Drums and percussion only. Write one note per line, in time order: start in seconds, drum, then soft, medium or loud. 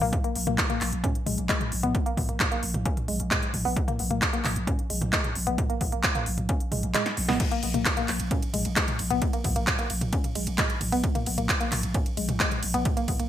0.01 mid tom medium
0.01 open hi-hat medium
0.13 kick loud
0.13 closed hi-hat medium
0.13 mid tom medium
0.24 closed hi-hat soft
0.35 open hi-hat loud
0.47 closed hi-hat medium
0.47 mid tom loud
0.58 kick loud
0.58 clap loud
0.58 closed hi-hat medium
0.70 closed hi-hat medium
0.70 mid tom medium
0.81 clap medium
0.81 open hi-hat loud
0.93 closed hi-hat medium
1.04 kick loud
1.04 closed hi-hat medium
1.04 mid tom loud
1.15 closed hi-hat medium
1.27 mid tom medium
1.27 open hi-hat loud
1.38 closed hi-hat medium
1.49 kick loud
1.49 clap loud
1.49 closed hi-hat medium
1.61 closed hi-hat soft
1.61 mid tom loud
1.72 open hi-hat loud
1.83 closed hi-hat medium
1.83 mid tom medium
1.95 kick loud
1.95 closed hi-hat medium
2.06 closed hi-hat medium
2.17 kick medium
2.17 mid tom loud
2.17 open hi-hat loud
2.29 closed hi-hat medium
2.40 kick loud
2.40 clap loud
2.40 closed hi-hat medium
2.40 mid tom medium
2.52 closed hi-hat medium
2.63 open hi-hat loud
2.74 closed hi-hat medium
2.74 mid tom loud
2.85 kick loud
2.85 closed hi-hat medium
2.97 closed hi-hat medium
2.97 mid tom medium
3.08 open hi-hat loud
3.20 closed hi-hat soft
3.31 kick loud
3.31 clap loud
3.31 closed hi-hat medium
3.31 mid tom loud
3.43 closed hi-hat soft
3.54 mid tom medium
3.54 open hi-hat loud
3.65 open hi-hat medium
3.77 kick loud
3.77 closed hi-hat medium
3.88 closed hi-hat medium
3.88 mid tom loud
3.99 open hi-hat loud
4.11 closed hi-hat medium
4.11 mid tom medium
4.22 kick loud
4.22 clap loud
4.22 closed hi-hat medium
4.33 closed hi-hat medium
4.45 clap medium
4.45 mid tom medium
4.45 open hi-hat loud
4.56 closed hi-hat medium
4.67 kick loud
4.67 closed hi-hat medium
4.67 mid tom medium
4.79 closed hi-hat medium
4.90 open hi-hat loud
5.02 closed hi-hat medium
5.02 mid tom loud
5.13 kick loud
5.13 clap loud
5.13 closed hi-hat medium
5.24 closed hi-hat medium
5.24 mid tom medium
5.35 open hi-hat loud
5.47 closed hi-hat medium
5.58 kick loud
5.58 closed hi-hat medium
5.58 mid tom medium
5.70 closed hi-hat medium
5.81 kick medium
5.81 mid tom medium
5.81 open hi-hat loud
5.92 closed hi-hat medium
6.03 kick loud
6.03 clap loud
6.03 closed hi-hat loud
6.15 closed hi-hat medium
6.15 mid tom medium
6.26 open hi-hat loud
6.38 closed hi-hat medium
6.38 mid tom medium
6.49 kick loud
6.49 closed hi-hat medium
6.60 closed hi-hat medium
6.72 mid tom medium
6.72 open hi-hat loud
6.83 closed hi-hat medium
6.94 clap loud
6.94 closed hi-hat loud
6.94 mid tom medium
7.06 snare medium
7.06 closed hi-hat medium
7.17 open hi-hat loud
7.29 snare loud
7.29 mid tom medium
7.40 kick loud
7.40 closed hi-hat loud
7.40 mid tom medium
7.40 crash medium
7.40 ride medium
7.51 closed hi-hat medium
7.51 ride medium
7.63 open hi-hat loud
7.63 ride medium
7.74 closed hi-hat medium
7.74 mid tom medium
7.74 ride medium
7.85 kick loud
7.85 clap loud
7.85 closed hi-hat medium
7.85 ride medium
7.97 closed hi-hat medium
7.97 mid tom medium
7.97 ride medium
8.08 clap medium
8.08 open hi-hat loud
8.08 ride medium
8.20 closed hi-hat medium
8.20 ride medium
8.31 kick loud
8.31 closed hi-hat loud
8.31 mid tom medium
8.31 ride medium
8.42 closed hi-hat medium
8.42 ride medium
8.54 mid tom medium
8.54 open hi-hat loud
8.54 ride medium
8.65 closed hi-hat medium
8.65 ride medium
8.76 kick loud
8.76 clap loud
8.76 closed hi-hat loud
8.76 ride medium
8.88 closed hi-hat medium
8.88 mid tom medium
8.88 ride medium
8.99 open hi-hat loud
8.99 ride medium
9.10 closed hi-hat medium
9.10 mid tom medium
9.10 ride medium
9.22 kick loud
9.22 closed hi-hat medium
9.22 ride medium
9.33 closed hi-hat medium
9.33 ride medium
9.44 kick medium
9.44 mid tom medium
9.44 open hi-hat loud
9.44 ride medium
9.56 closed hi-hat medium
9.56 ride medium
9.67 kick loud
9.67 clap loud
9.67 closed hi-hat loud
9.67 mid tom medium
9.67 ride medium
9.79 closed hi-hat medium
9.79 ride medium
9.90 open hi-hat loud
9.90 ride medium
10.01 closed hi-hat medium
10.01 mid tom medium
10.01 ride medium
10.13 kick loud
10.13 closed hi-hat medium
10.13 ride medium
10.24 closed hi-hat medium
10.24 mid tom medium
10.24 ride medium
10.35 open hi-hat loud
10.35 ride medium
10.47 closed hi-hat medium
10.47 ride medium
10.58 kick loud
10.58 clap loud
10.58 closed hi-hat loud
10.58 mid tom medium
10.58 ride medium
10.70 closed hi-hat medium
10.70 ride medium
10.81 mid tom medium
10.81 open hi-hat loud
10.81 ride medium
10.92 open hi-hat medium
10.92 ride medium
11.04 kick loud
11.04 closed hi-hat loud
11.04 ride medium
11.15 closed hi-hat medium
11.15 mid tom medium
11.15 ride medium
11.26 open hi-hat loud
11.26 ride medium
11.38 closed hi-hat medium
11.38 mid tom medium
11.38 ride medium
11.49 kick loud
11.49 clap loud
11.49 closed hi-hat medium
11.49 ride medium
11.61 closed hi-hat medium
11.61 ride medium
11.72 clap medium
11.72 mid tom medium
11.72 open hi-hat loud
11.72 ride medium
11.83 closed hi-hat medium
11.83 ride medium
11.94 kick loud
11.94 closed hi-hat loud
11.94 mid tom medium
11.94 ride medium
12.06 closed hi-hat medium
12.06 ride medium
12.17 open hi-hat loud
12.17 ride medium
12.29 closed hi-hat medium
12.29 mid tom medium
12.29 ride medium
12.40 kick loud
12.40 clap loud
12.40 closed hi-hat loud
12.40 ride medium
12.51 closed hi-hat medium
12.51 mid tom medium
12.51 ride medium
12.63 open hi-hat loud
12.63 ride medium
12.74 closed hi-hat medium
12.74 ride medium
12.85 kick loud
12.85 closed hi-hat medium
12.85 mid tom medium
12.85 ride medium
12.97 closed hi-hat medium
12.97 ride medium
13.08 kick medium
13.08 mid tom medium
13.08 open hi-hat loud
13.08 ride medium
13.19 closed hi-hat medium
13.19 ride medium